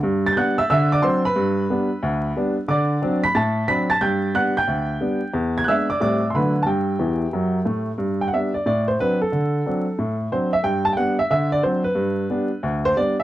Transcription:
X:1
M:4/4
L:1/16
Q:"Swing" 1/4=181
K:G
V:1 name="Upright piano"
z2 a' g' [ff']2 [ee']2 [ee']2 [dd']2 [cc']2 [Bb]2- | [Bb]16 | [dd']6 [bb']2 [aa']4 [bb']2 [aa']2 | [gg']4 [ff']2 [gg']8- [gg']2 |
z2 ^g' f' [ee']2 [dd']2 [dd']3 c' [Bb]3 a | [Gg]12- [Gg]2 z2 | z2 g f e2 d2 d2 c2 B2 A2- | A12 c2 e2 |
g2 a g f2 e2 e2 d2 c2 B2- | B8- B2 c2 d2 e2 |]
V:2 name="Upright piano" clef=bass
G,,4 [G,B,D]4 D,4 [F,CD]4 | G,,4 [G,B,D]4 D,,4 [G,B,D]4 | D,4 [F,CD]4 A,,4 [F,CD]4 | G,,4 [G,B,D]4 D,,4 [G,B,D]4 |
E,,4 [^G,B,D]4 [A,,=G,A,C]4 [D,F,A,D]4 | G,,4 [E,,E,]4 [F,,F,]4 [A,,A,]4 | G,,4 [G,B,D]4 A,,4 [F,CD]4 | D,4 [F,CD]4 A,,4 [F,CD]4 |
G,,4 [G,B,D]4 D,4 [F,CD]4 | G,,4 [G,B,D]4 D,,4 [G,B,D]4 |]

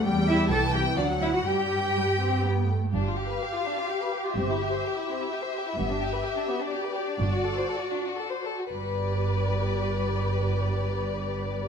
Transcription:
X:1
M:3/4
L:1/16
Q:1/4=124
K:G
V:1 name="Violin section"
g4 g4 f4 | g8- g2 z2 | =f12 | e12- |
e8 d4- | d8- d2 z2 | d12- | d12 |]
V:2 name="Violin section"
z2 e2 a2 g2 d2 e f | g8 z4 | D =F G B G F D F G B G F | C E G c G E C E G c G E |
B, D G B G D B, D G B G D | D F A c A F D F A c A F | B12- | B12 |]
V:3 name="Cello section"
z2 E2 A2 G2 D2 E F | G8 z4 | G,,4 z8 | G,,4 z8 |
G,,4 z8 | G,,4 z8 | G,,12- | G,,12 |]
V:4 name="Viola section"
G,4 E,4 F,4 | G,4 G,2 C2 B,2 A, A, | G12- | G12 |
G12 | F8- F2 z2 | G12- | G12 |]
V:5 name="Double bass section" clef=bass
E,,4 C,,4 D,,4 | G,,8- G,,2 z2 | G,,,4 z8 | G,,,4 z8 |
G,,,4 z8 | G,,,4 z8 | G,,,12- | G,,,12 |]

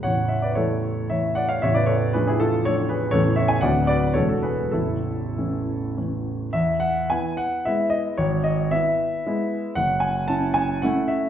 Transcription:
X:1
M:3/4
L:1/16
Q:1/4=112
K:A
V:1 name="Grand piano"
[cf]2 [ce] [Bd] [Ac]4 [ce]2 [df] [c=f] | [ce] [Bd] [Ac]2 [GB] [EG] [=FA]2 [Ac]2 [GB]2 | [Ac]2 [ce] [eg] [df]2 [Bd]2 [Ac] [FA] [GB]2 | [EA]8 z4 |
[K:E] e2 f2 g2 f2 e2 d2 | c2 d2 e8 | f2 g2 a2 g2 f2 e2 |]
V:2 name="Grand piano"
[A,,,,A,,,]4 [E,A,E]4 [E,A,E]4 | [A,,,,A,,,]4 [=F,A,D]4 [F,A,D]4 | [A,,,,A,,,E,A,C]4 [D,,,D,,F,B,D]4 [E,,,E,,F,G,D]4 | [A,,,,A,,,]4 [E,A,C]4 [E,A,C]4 |
[K:E] E,,4 [B,E]4 [G,B,E]4 | G,,,4 [B,E]4 [G,B,E]4 | F,,,4 [CE]4 [A,CE]4 |]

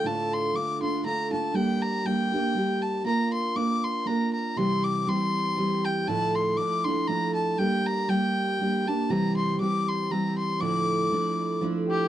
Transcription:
X:1
M:3/4
L:1/8
Q:"Swing" 1/4=119
K:Dm
V:1 name="Fiddle"
a c' d' c' b a | g b g3 a | b c' d' c' b b | c' d' c'3 g |
a c' d' c' b a | g b g3 a | b c' d' c' b c' | d'4 z G |]
V:2 name="Accordion"
z6 | z6 | z6 | z6 |
z6 | z6 | z6 | z4 z G |]
V:3 name="Steel-string acoustic guitar"
[D,,A,,D,A,DF]2 [D,A,DF] [D,A,DF] [D,A,DF] [D,A,DF] | [G,B,DG]2 [G,B,DG] [B,DG] [G,B,DG]2 | [B,DFB]2 [B,DFB]2 [B,DFB]2 | [C,E,G,CG]2 [E,G,CG]2 [E,G,CG]2 |
[D,,A,,F,A,DE]2 [F,A,DE] [F,A,DE] [F,A,DE]2 | [G,B,DG]2 [G,B,DG]2 [G,B,DG] [B,DG] | [C,E,G,CG]2 [E,G,CG]2 [E,G,CG]2 | [D,,A,,F,A,DE]2 [F,A,DE]2 [F,A,DE]2 |]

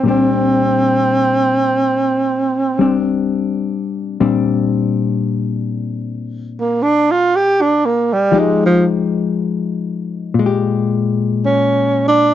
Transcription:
X:1
M:4/4
L:1/16
Q:"Swing" 1/4=58
K:Bb
V:1 name="Tenor saxophone"
C12 z4 | z8 z B, D F G D B, G, | _A, F, z8 z2 ^C2 D2 |]
V:2 name="Hollow-body jazz guitar"
[B,,G,CD]8- [B,,G,CD]2 [G,CD]6 | [B,,G,CD]16 | [F,_A,EG]8 [B,,A,G]8 |]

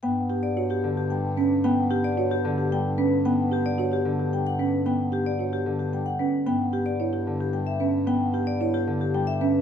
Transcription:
X:1
M:3/4
L:1/16
Q:1/4=112
K:Glyd
V:1 name="Vibraphone"
g z G d c G z G g z B z | g z G d c G z G g z B z | g z G d c G z G g f B z | g z G d c G z G g f B z |
g z G d c G z G g e B z | g z G d c G z G g e B z |]
V:2 name="Marimba"
z2 G z F G z4 C z | z2 G z F G z4 C z | z2 G z F G z4 C z | z2 G z F G z4 C z |
z2 G z E G z4 C z | z2 G z E G z4 C z |]
V:3 name="Harp" clef=bass
B,6 D,2 G,4 | B,6 D,2 G,4 | B,6 D,2 G,4 | B,6 D,2 G,4 |
B,6 D,2 G,4 | B,6 D,2 G,4 |]
V:4 name="Bass clarinet" clef=bass
G,,12- | G,,12- | G,,12- | G,,12 |
G,,12- | G,,12 |]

